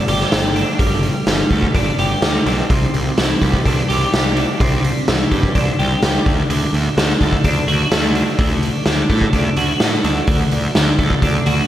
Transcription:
0.00 0.79 G3 medium
0.00 0.31 A3 medium
0.00 0.55 D4 medium
0.08 0.23 G1 medium
0.08 1.55 G4 medium
0.08 open hi-hat medium
0.21 snare soft
0.32 0.62 G1 medium
0.32 1.50 A3 medium
0.32 snare loud
0.32 open hi-hat medium
0.55 1.75 D4 medium
0.55 open hi-hat medium
0.79 1.09 G1 medium
0.79 1.27 G3 medium
0.79 kick medium
0.79 open hi-hat medium
1.03 open hi-hat soft
1.27 1.42 G1 medium
1.27 3.17 G3 medium
1.27 snare medium
1.27 open hi-hat medium
1.50 1.66 D2 medium
1.50 2.22 A3 medium
1.50 kick medium
1.50 open hi-hat soft
1.63 kick medium
1.75 1.90 G1 medium
1.75 2.47 D4 medium
1.75 kick medium
1.75 open hi-hat medium
1.98 2.13 G1 medium
1.98 3.88 G4 medium
1.98 open hi-hat soft
2.22 2.37 D2 medium
2.22 2.70 A3 medium
2.22 snare loud
2.22 open hi-hat medium
2.46 2.61 B1 medium
2.46 2.74 D4 medium
2.46 open hi-hat medium
2.70 2.85 C2 loud
2.70 3.89 C3 medium
2.70 kick loud
2.70 open hi-hat medium
2.94 3.09 C2 medium
2.94 open hi-hat soft
3.18 3.33 C2 medium
3.18 4.36 E3 medium
3.18 snare medium
3.18 open hi-hat medium
3.42 3.57 C2 medium
3.42 4.11 G3 medium
3.42 kick medium
3.42 open hi-hat medium
3.54 kick medium
3.65 3.81 C2 medium
3.65 4.36 D4 medium
3.65 kick medium
3.65 open hi-hat medium
3.89 4.04 C2 medium
3.89 5.07 G4 medium
3.89 open hi-hat medium
4.12 4.44 C2 medium
4.12 5.30 G3 medium
4.12 snare loud
4.12 open hi-hat medium
4.37 5.55 D4 medium
4.37 open hi-hat medium
4.60 4.90 C2 medium
4.60 5.79 C3 medium
4.60 kick loud
4.60 open hi-hat medium
4.84 open hi-hat medium
5.08 5.23 C2 medium
5.08 6.27 E3 medium
5.08 snare loud
5.08 open hi-hat medium
5.31 5.47 G2 medium
5.31 6.02 G3 medium
5.31 kick medium
5.31 open hi-hat soft
5.43 kick medium
5.55 5.70 C2 medium
5.55 7.44 D4 medium
5.55 kick medium
5.55 open hi-hat medium
5.79 5.94 C2 medium
5.79 6.26 G4 medium
5.79 open hi-hat soft
6.02 6.17 C#2 medium
6.02 6.27 G3 medium
6.02 snare loud
6.02 open hi-hat medium
6.26 6.41 D2 medium
6.26 6.50 D3 medium
6.26 kick loud
6.26 open hi-hat soft
6.49 6.64 D2 medium
6.49 6.98 D3 medium
6.49 open hi-hat medium
6.73 6.88 D2 medium
6.73 open hi-hat soft
6.97 7.12 D2 medium
6.97 8.38 D3 medium
6.97 snare loud
6.97 open hi-hat medium
7.10 snare soft
7.21 7.36 D2 medium
7.21 7.91 A3 medium
7.21 kick medium
7.21 open hi-hat soft
7.33 kick medium
7.44 7.59 D2 medium
7.44 8.15 D4 medium
7.44 kick medium
7.44 open hi-hat medium
7.67 7.82 D2 medium
7.67 9.57 F#4 medium
7.67 open hi-hat medium
7.91 8.21 D2 medium
7.91 9.09 A3 medium
7.91 snare loud
7.91 open hi-hat medium
8.15 9.33 D4 medium
8.15 open hi-hat medium
8.39 8.69 D2 loud
8.39 8.85 D3 medium
8.39 kick loud
8.39 open hi-hat medium
8.63 open hi-hat soft
8.86 9.01 D2 medium
8.86 10.04 D3 medium
8.86 snare loud
8.86 open hi-hat medium
9.10 9.25 A2 medium
9.10 9.81 A3 medium
9.10 kick medium
9.10 open hi-hat soft
9.21 kick medium
9.33 9.48 D2 medium
9.33 10.03 D4 medium
9.33 kick medium
9.33 open hi-hat medium
9.56 9.72 D2 medium
9.56 10.75 F#4 medium
9.56 open hi-hat medium
9.80 9.95 A2 medium
9.80 10.99 A3 medium
9.80 snare loud
9.80 open hi-hat medium
10.04 10.19 D2 medium
10.04 11.22 D4 medium
10.04 open hi-hat soft
10.27 10.43 D2 medium
10.27 10.74 D3 medium
10.27 kick loud
10.27 open hi-hat medium
10.51 10.67 D2 medium
10.51 open hi-hat medium
10.75 10.91 D2 medium
10.75 11.67 D3 medium
10.75 snare medium
10.75 open hi-hat medium
10.98 11.13 D2 medium
10.98 11.67 A3 medium
10.98 kick medium
10.98 open hi-hat soft
11.10 kick medium
11.22 11.37 D2 medium
11.22 11.67 D4 medium
11.22 kick medium
11.22 open hi-hat medium
11.46 11.61 D2 medium
11.46 11.67 F#4 medium
11.46 open hi-hat medium

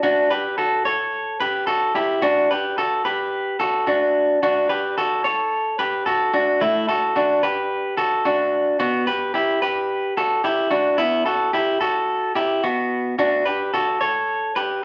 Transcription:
0.03 0.31 D4 medium
0.03 0.30 F#4 loud
0.31 0.58 G4 medium
0.31 0.57 B4 medium
0.58 0.85 F#4 medium
0.58 0.85 A4 medium
0.85 1.37 A4 medium
0.85 1.37 C#5 medium
1.40 1.68 G4 medium
1.40 1.67 B4 medium
1.67 1.95 F#4 medium
1.67 1.94 A4 medium
1.95 2.23 E4 medium
1.95 2.22 G4 medium
2.22 2.50 D4 medium
2.22 2.50 F#4 loud
2.51 2.78 G4 medium
2.51 2.77 B4 medium
2.78 3.05 F#4 medium
2.78 3.05 A4 medium
3.05 3.57 G4 medium
3.05 3.56 B4 medium
3.60 3.86 F#4 medium
3.60 3.87 A4 medium
3.87 4.39 D4 medium
3.87 4.38 F#4 medium
4.43 4.70 D4 medium
4.43 4.69 F#4 medium
4.69 4.97 G4 medium
4.69 4.96 B4 medium
4.98 5.24 F#4 medium
4.98 5.24 A4 medium
5.24 5.76 A4 medium
5.24 5.75 C#5 medium
5.79 6.06 G4 medium
5.79 6.06 B4 medium
6.06 6.32 F#4 medium
6.06 6.33 A4 medium
6.34 6.61 D4 medium
6.34 6.61 F#4 medium
6.61 6.88 A3 medium
6.61 6.88 E4 loud
6.89 7.15 F#4 medium
6.89 7.15 A4 medium
7.16 7.43 D4 medium
7.16 7.43 F#4 medium
7.43 7.95 G4 medium
7.43 7.94 B4 medium
7.97 8.24 F#4 medium
7.97 8.25 A4 medium
8.25 8.77 D4 medium
8.25 8.76 F#4 medium
8.80 9.07 B3 medium
8.80 9.07 F#4 loud
9.07 9.33 G4 medium
9.07 9.34 B4 medium
9.34 9.62 E4 medium
9.34 9.61 G4 medium
9.62 10.14 G4 medium
9.62 10.13 B4 medium
10.17 10.44 F#4 medium
10.17 10.44 A4 medium
10.44 10.72 E4 medium
10.44 10.70 G4 medium
10.71 10.98 D4 medium
10.71 10.98 F#4 medium
10.98 11.26 B3 medium
10.98 11.25 E4 loud
11.26 11.53 F#4 medium
11.26 11.53 A4 medium
11.53 11.80 E4 medium
11.53 11.81 G4 medium
11.81 12.32 F#4 medium
11.81 12.32 A4 medium
12.35 12.63 E4 medium
12.35 12.63 G4 medium
12.64 13.15 B3 medium
12.64 13.15 F#4 medium
13.19 13.46 D4 medium
13.19 13.45 F#4 loud
13.46 13.73 G4 medium
13.46 13.72 B4 medium
13.74 14.01 F#4 medium
13.74 14.00 A4 medium
14.01 14.52 A4 medium
14.01 14.52 C#5 medium
14.56 14.83 G4 medium
14.56 14.82 B4 medium

